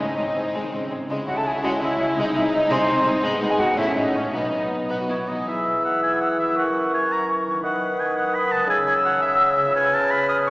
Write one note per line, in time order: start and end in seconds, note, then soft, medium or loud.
0.00 1.10 G#2 soft
0.00 0.16 G#3 soft
0.00 0.89 C4 soft
0.00 0.54 D#4 soft
0.00 0.91 D#4 soft
0.00 0.53 D#5 medium
0.17 0.25 G#1 soft
0.17 0.25 G#2 soft
0.17 1.11 D#3 soft
0.17 0.25 G#3 soft
0.35 0.42 G#3 soft
0.35 0.42 C4 soft
0.35 0.89 G#4 soft
0.53 0.61 G#1 soft
0.53 0.58 C3 soft
0.53 0.71 G#3 soft
0.53 1.10 D#5 soft
0.63 0.72 D#3 soft
0.72 0.80 G#1 soft
0.72 0.90 C#3 soft
0.72 0.80 G#3 soft
0.72 1.10 C5 soft
0.90 0.98 G#1 soft
0.90 1.09 C3 soft
0.90 0.97 G#3 soft
0.90 0.98 G#3 soft
0.90 0.97 C4 soft
0.90 1.44 G#4 soft
1.08 1.16 C#2 soft
1.08 1.16 C#3 medium
1.08 2.18 C#3 soft
1.08 1.26 G#3 medium
1.08 2.14 G#3 soft
1.08 2.13 C#4 soft
1.08 2.13 E4 soft
1.27 1.35 C#2 soft
1.27 1.34 C#3 soft
1.27 2.34 G#3 soft
1.27 1.35 G#3 soft
1.27 1.36 F#4 soft
1.27 1.38 F#5 medium
1.36 1.45 A4 medium
1.36 1.48 A5 medium
1.45 1.97 G#4 soft
1.45 1.63 G#4 medium
1.45 1.63 G#5 medium
1.62 1.71 C#2 medium
1.62 1.70 C#3 medium
1.62 1.80 G#3 medium
1.62 1.70 F#4 medium
1.62 2.18 E5 soft
1.62 1.69 F#5 medium
1.80 1.89 C#2 soft
1.80 1.88 C#3 soft
1.80 1.89 G#3 soft
1.80 1.98 E4 medium
1.80 2.18 C#5 soft
1.80 1.99 E5 medium
1.98 2.06 C#2 soft
1.98 2.05 C#3 soft
1.98 2.06 G#3 soft
1.98 2.17 E4 medium
1.98 2.52 G#4 soft
1.98 2.06 E5 medium
2.16 2.24 C2 medium
2.16 3.25 C3 medium
2.16 2.24 C3 medium
2.16 2.69 G#3 medium
2.16 2.33 G#3 medium
2.16 3.24 D#4 medium
2.16 2.69 D#4 medium
2.16 2.35 D#4 medium
2.16 3.77 D#4 medium
2.16 2.23 D#5 medium
2.34 2.42 C2 soft
2.34 2.42 C3 soft
2.34 2.42 G#3 soft
2.34 4.35 G#3 soft
2.34 2.53 E4 medium
2.34 2.42 E5 medium
2.53 2.70 D#4 medium
2.53 3.04 G#4 soft
2.53 2.72 D#5 medium
2.70 2.78 C2 medium
2.70 2.77 C3 medium
2.70 3.22 G#3 medium
2.70 2.87 G#3 medium
2.70 3.24 C4 medium
2.70 3.23 D#4 medium
2.70 3.25 C5 medium
2.70 3.24 C5 medium
2.88 2.95 C2 medium
2.88 2.95 C3 medium
2.88 2.95 G#3 medium
2.88 3.59 D#5 soft
3.05 3.13 C2 soft
3.05 3.12 C3 soft
3.05 3.12 G#3 medium
3.05 3.58 G#4 soft
3.22 3.31 G#1 medium
3.22 3.78 G#2 medium
3.22 3.30 G#2 medium
3.22 3.39 G#3 medium
3.22 3.74 G#3 medium
3.22 3.75 B3 medium
3.22 3.74 B3 medium
3.40 3.48 G#1 soft
3.40 3.48 G#2 soft
3.40 3.48 G#3 medium
3.40 3.78 B3 soft
3.40 3.50 D#4 medium
3.40 3.51 D#5 medium
3.50 3.59 G#4 medium
3.50 3.60 G#5 medium
3.59 3.77 F#4 medium
3.59 4.12 G#4 soft
3.59 3.79 D#5 soft
3.59 3.79 F#5 medium
3.76 3.84 A1 medium
3.76 3.83 A2 medium
3.76 4.34 A2 medium
3.76 4.32 G#3 soft
3.76 3.94 A3 medium
3.76 4.33 C#4 soft
3.76 4.33 C#4 medium
3.76 4.33 C#4 soft
3.76 3.95 E4 medium
3.76 3.98 E5 medium
3.95 4.03 A1 soft
3.95 4.02 A2 soft
3.95 4.03 G#3 soft
3.95 4.35 A3 soft
3.95 4.14 D#4 medium
3.95 4.14 D#5 medium
4.13 4.22 A1 soft
4.13 4.22 A2 soft
4.13 4.22 G#3 soft
4.13 4.34 C#4 soft
4.13 4.34 G#4 soft
4.13 4.34 C#5 soft
4.13 4.33 C#5 soft
4.33 4.41 B1 soft
4.33 5.48 B2 soft
4.33 4.41 B2 soft
4.33 5.28 F#3 soft
4.33 4.50 B3 soft
4.33 5.28 B3 soft
4.33 4.85 D#4 soft
4.33 4.90 D#4 soft
4.33 4.89 D#5 soft
4.52 4.60 B2 soft
4.52 4.59 B3 soft
4.52 6.58 B3 soft
4.72 5.08 F#4 soft
4.89 4.98 B1 soft
4.89 4.97 B2 soft
4.89 5.07 B3 soft
4.89 4.99 D#4 soft
4.89 5.42 B4 soft
4.89 4.99 F#5 soft
4.99 5.03 F#4 soft
5.08 5.17 B1 soft
5.08 5.16 B2 soft
5.08 5.16 B3 soft
5.08 5.16 E4 soft
5.08 5.48 F#4 soft
5.08 5.30 C#5 soft
5.27 5.36 B1 soft
5.27 5.35 B2 soft
5.27 6.38 E3 soft
5.27 5.48 F#3 soft
5.27 5.35 B3 soft
5.27 5.47 D#4 soft
5.27 5.47 D#5 soft
5.34 6.52 G#3 soft
5.39 7.61 E4 soft
5.44 7.60 E3 soft
5.44 6.58 G#4 soft
5.44 6.56 B4 soft
5.44 6.57 E6 soft
5.48 5.84 E5 medium
5.85 6.02 F#5 medium
6.03 6.20 G#5 medium
6.21 6.38 F#5 medium
6.39 7.56 E3 soft
6.39 6.57 E5 medium
6.43 7.50 F#3 soft
6.48 7.61 C#4 soft
6.53 7.63 A#4 soft
6.53 7.64 C#6 soft
6.58 6.93 F#5 medium
6.94 7.14 G#5 medium
7.12 7.29 A#5 medium
7.46 8.61 D#3 soft
7.51 8.64 F#3 soft
7.56 8.66 B3 soft
7.60 8.69 D#3 medium
7.60 8.68 B4 soft
7.60 8.69 B4 soft
7.60 8.01 F#5 medium
7.60 8.67 D#6 soft
8.00 8.16 G#5 medium
8.17 8.36 F#5 medium
8.35 8.53 B5 medium
8.50 9.56 C#3 soft
8.50 8.69 A5 medium
8.55 10.50 G#3 soft
8.59 10.50 C#4 soft
8.64 9.69 G#4 soft
8.64 9.74 G#4 medium
8.68 10.50 C#3 medium
8.68 8.78 G#5 medium
8.68 9.77 E6 medium
8.87 8.94 G#5 medium
9.05 9.21 F#5 medium
9.22 9.74 E5 medium
9.57 10.50 C#3 soft
9.61 10.50 B3 soft
9.66 10.50 F4 soft
9.70 10.50 G#4 soft
9.75 10.50 B4 medium
9.75 9.96 G#5 medium
9.75 10.50 F6 medium
9.94 10.12 A5 medium
10.11 10.28 B5 medium
10.29 10.37 D#6 medium